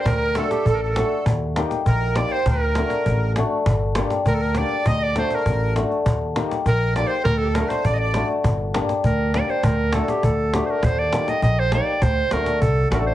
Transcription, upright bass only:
X:1
M:2/4
L:1/8
Q:1/4=100
K:none
V:1 name="Upright bass" clef=bass
D,,2 A,,,2 | _E,,2 _B,,,2 | D,,2 A,,,2 | G,,,2 D,,2 |
D,,2 A,,,2 | _E,,2 _B,,,2 | D,,2 A,,,2 | G,,,2 D,,2 |
D,,2 D,,2 | _E,,2 _B,,,2 | D,, D,, C,, A,,, |]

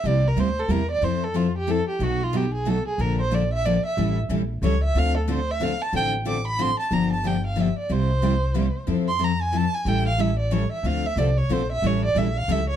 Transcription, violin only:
X:1
M:3/4
L:1/16
Q:"Swing" 1/4=183
K:Dm
V:1 name="Violin"
d2 B2 c2 A2 B2 d2 | c2 A2 F2 G2 A2 G2 | ^F2 =F2 G2 ^G2 A2 G2 | B2 c2 d2 e2 d2 e2- |
e2 z6 ^c2 e2 | f2 A2 c2 e2 f2 a2 | g2 z2 d'2 =b2 c'2 a2 | b2 a2 g2 f2 e2 d2 |
c8- c3 z | z2 c'2 b2 ^g2 a2 g2 | g2 f2 e2 d2 ^c2 e2 | f2 e2 d2 ^c2 =c2 e2 |
^c2 d2 e2 f2 e2 c2 |]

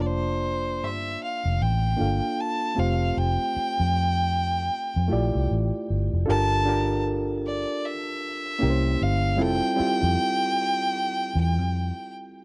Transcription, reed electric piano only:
X:1
M:4/4
L:1/8
Q:"Swing 16ths" 1/4=77
K:F
V:1 name="Reed electric piano"
[B,DFda]2 z3 [B,DFAf]2 [A,CFGc]- | [A,CFGc]2 z3 [A,EFGd]2 z | [DFGAB] [DFGAB]3 z2 [B,_DEGBc]2 | [G,CEFA] [G,CEFG]3 z4 |]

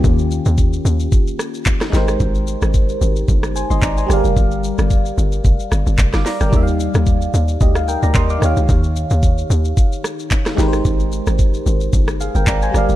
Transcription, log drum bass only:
X:1
M:4/4
L:1/16
Q:"Swing 16ths" 1/4=111
K:Eb
V:1 name="Log drum bass" clef=bass
E,,3 E,,3 E,,2 z6 A,,,2 | A,,,3 A,,,3 A,,,2 G,,,3 G,,, A,,,2 G,,, F,,, | G,,,3 G,,,3 G,,,2 F,,, z G,,, G,,, F,,, G,,, z G,,, | E,,3 E,,3 E,,2 D,,3 D,, E,,2 E,, _D,, |
E,,3 E,,3 E,,2 z6 A,,,2 | A,,,3 A,,,3 A,,,2 G,,,3 G,,, A,,,2 G,,, F,,, |]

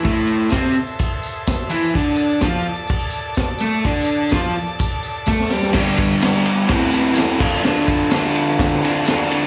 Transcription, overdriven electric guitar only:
X:1
M:4/4
L:1/8
Q:1/4=126
K:Ddor
V:1 name="Overdriven electric guitar"
[A,,A,]2 [C,C] z4 [E,E] | [D,D]2 [F,F] z4 [A,A] | [D,D]2 [F,F] z3 [A,A] [G,G] | [G,,D,G,B,DG]2 [G,B,DG]2 [A,,E,CEA] [CEA] [A,,E,CEA] [D,DFA] |
[D,DFA]2 [D,DFA]3 [DFA] [D,DFA] [DFA] |]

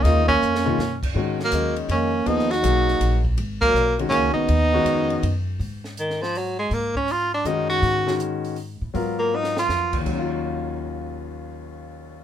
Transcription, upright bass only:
X:1
M:3/4
L:1/8
Q:"Swing" 1/4=162
K:Abdor
V:1 name="Upright bass" clef=bass
E,,2 F,,2 G,,2 | A,,2 E,,2 F,,2 | E,,2 C,,2 B,,,2 | A,,,2 C,,2 D,, z |
E,,2 F,,2 G,,2 | A,,6 | A,,4 G,,2 | A,,4- A,, =A,, |
A,,4 F,,2 | E,,6- | E,,6 |]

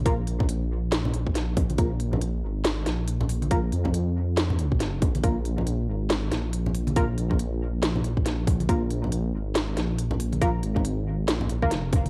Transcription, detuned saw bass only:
X:1
M:4/4
L:1/8
Q:"Swing 16ths" 1/4=139
K:Cphr
V:1 name="Detuned saw bass" clef=bass
B,,, B,,,4 B,,,3 | B,,,3 A,,,2 B,,,3- | B,,, F,,6 B,,, | B,,,3 A,,,2 B,,,3- |
B,,, B,,,4 B,,,3 | B,,,3 A,,,2 B,,,3- | B,,, A,,,3 B,,,2 F,,,2 |]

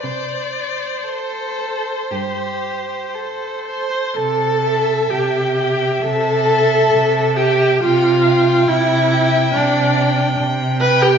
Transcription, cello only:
X:1
M:4/4
L:1/8
Q:1/4=66
K:C
V:1 name="Cello" clef=bass
C,2 z2 G,,2 z2 | C,2 C,2 C,2 C,2 | C,2 C,2 C,2 C,2 |]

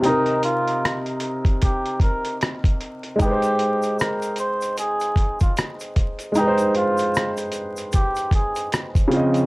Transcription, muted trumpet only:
X:1
M:4/4
L:1/16
Q:"Swing 16ths" 1/4=76
K:Ab
V:1 name="Muted trumpet"
E2 F3 z3 G2 B2 z4 | G4 B2 c2 A3 F z4 | E2 F3 z3 G2 A2 z4 |]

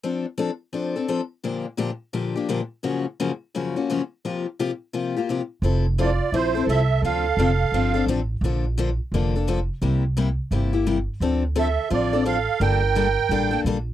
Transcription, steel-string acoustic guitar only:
X:1
M:4/4
L:1/16
Q:"Swing" 1/4=172
K:F
V:1 name="Steel-string acoustic guitar"
[F,CDA]2 z2 [F,CDA] z3 [F,CDA]2 [CDA]2 [F,CDA] z3 | [B,,D,F,B,DG]2 z2 [B,,D,F,B,DG] z3 [B,,D,F,B,DG]2 [F,B,DG]2 [B,,D,F,B,DG] z3 | [_G,,_D,F,B,_D_G]2 z2 [G,,D,F,B,DG] z3 [G,,D,F,B,DG]2 [F,B,DG]2 [G,,D,F,B,DG] z3 | [C,F,B,FG]2 z2 [C,F,B,FG] z3 [C,F,B,FG]2 [B,FG]2 [C,F,B,FG] z3 |
[F,CEA]2 z2 [F,CEA] z3 [F,CEA]2 [CEA]2 [F,CEA] z3 | [D,F,CDA]2 z2 [D,F,CDA] z3 [D,F,CDA]2 [CDA]2 [D,F,CDA] z3 | [D,F,B,DA]2 z2 [D,F,B,DA] z3 [D,F,B,DA]2 [B,DA]2 [D,F,B,DA] z3 | [C,G,B,EG]2 z2 [C,G,B,EG] z3 [C,G,B,EG]2 [B,EG]2 [C,G,B,EG] z3 |
[D,F,CDA]2 z2 [D,F,CDA] z3 [D,F,CDA]2 [CDA]2 [D,F,CDA] z3 | [D,G,B,DA]2 z2 [D,G,B,DA] z3 [D,G,B,DA]2 [B,DA]2 [D,G,B,DA] z3 |]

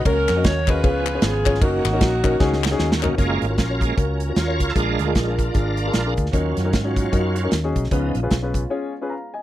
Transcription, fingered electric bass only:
X:1
M:4/4
L:1/8
Q:"Swing" 1/4=152
K:F#
V:1 name="Fingered electric bass" clef=bass
C,, E,, D,,2 C,,2 G,,,2 | F,,, G,,, A,,,2 C,,2 D,,2 | F,,, G,,, A,,,2 C,,2 D,, C,, | A,,, =D,, A,,,2 G,,,2 A,,, D,, |
D,, F,, G,,2 F,,2 D,, B,,, | C,, A,,, B,,,2 z4 |]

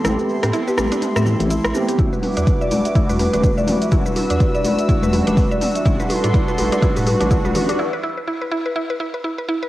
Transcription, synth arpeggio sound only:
X:1
M:4/4
L:1/16
Q:"Swing 16ths" 1/4=124
K:Ador
V:1 name="Synth arpeggio sound"
E z2 G E B z D z e z2 E z2 G | E B z D z e z2 E B z D z e z2 | E B z D z e z2 E B z D z e z2 | E B z D E B z D E B z D E B z D |
E B E B E B E B E B E B E B E B |]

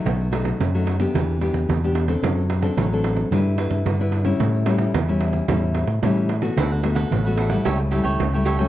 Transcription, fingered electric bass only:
X:1
M:4/4
L:1/16
Q:1/4=110
K:D
V:1 name="Fingered electric bass" clef=bass
B,,,4 F,,4 E,,3 E,, E,,4 | F,,4 A,,,4 G,,3 G,, G,,4 | A,,4 E,,4 E,,3 A,, A,,4 | D,,4 A,,,4 C,,3 C,, C,,4 |]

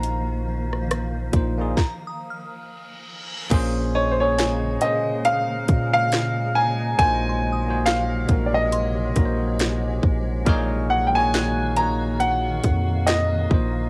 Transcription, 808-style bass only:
X:1
M:4/4
L:1/8
Q:"Swing 16ths" 1/4=69
K:Bbm
V:1 name="808-style bass" clef=bass
B,,,3 B,,, z4 | B,,,3 z2 B,,3 | B,,,3 B,,,2 B,,,2 B,,, | B,,,4- B,,, F,,2 B,,, |]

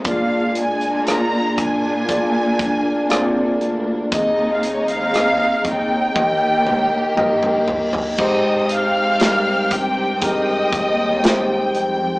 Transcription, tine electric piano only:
X:1
M:4/4
L:1/8
Q:1/4=59
K:Ab
V:1 name="Tine electric piano"
[B,FA=d]2 [B,FAB]2 [B,FAd]2 [B,FAd]2 | [CEAe]2 [CEAe]2 [B,EGe]2 [B,EGe]2 | [A,EGc]2 [G,EGB]2 [EGAB]2 [A,EGc]2 |]
V:2 name="Tine electric piano" clef=bass
B,,3 z4 z | E,3 z E,3 z | A,,3 z4 z |]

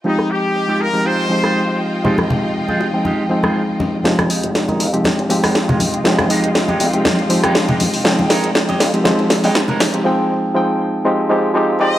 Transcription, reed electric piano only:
X:1
M:4/4
L:1/16
Q:"Swing 16ths" 1/4=120
K:Fm
V:1 name="Reed electric piano"
[F,A,CEG]6- [F,A,CEG] [F,A,CEG]3 [F,A,CEG]6 | [F,A,CEG]6- [F,A,CEG] [F,A,CEg]3 [F,A,CEg]6 | [F,A,CEG]6- [F,A,CEG] [F,A,CEG]3 [F,A,CEG]6 | [F,A,CEG]6- [F,A,CEG] [F,A,CEG]3 [F,A,CEG]6 |
[F,A,CEg]6- [F,A,CEg] [F,A,CEG] [F,A,CEG]6- [F,A,CEG] [F,A,CEG] | [F,A,CEg]4 [F,A,CEg]4 [F,A,CEG]2 [F,A,CEG]2 [F,A,CEG]2 [F,A,CEG]2 |]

